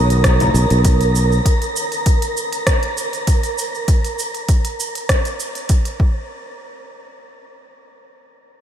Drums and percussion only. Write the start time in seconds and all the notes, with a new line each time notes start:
0.10 closed hi-hat, shaker
0.24 kick, cross-stick, closed hi-hat, shaker
0.40 closed hi-hat, high conga, shaker
0.55 shaker
0.70 closed hi-hat, shaker
0.85 kick, closed hi-hat, shaker
1.01 closed hi-hat, shaker
1.16 shaker
1.32 shaker
1.46 kick, closed hi-hat, shaker
1.62 closed hi-hat, shaker
1.76 shaker
1.92 closed hi-hat, shaker
2.06 kick, closed hi-hat, shaker
2.22 closed hi-hat, shaker
2.37 shaker
2.53 closed hi-hat, shaker
2.67 kick, cross-stick, closed hi-hat, shaker
2.83 closed hi-hat
2.98 shaker
3.13 closed hi-hat, shaker
3.27 kick, closed hi-hat, shaker
3.43 closed hi-hat, shaker
3.58 shaker
3.75 shaker
3.88 kick, closed hi-hat, shaker
4.04 closed hi-hat, shaker
4.19 shaker
4.34 closed hi-hat, shaker
4.49 kick, closed hi-hat, shaker
4.65 closed hi-hat, shaker
4.80 shaker
4.95 closed hi-hat, shaker
5.09 kick, cross-stick, closed hi-hat, shaker
5.25 closed hi-hat, shaker
5.40 shaker
5.55 closed hi-hat, shaker
5.69 kick, closed hi-hat, shaker
5.85 closed hi-hat, shaker
6.00 kick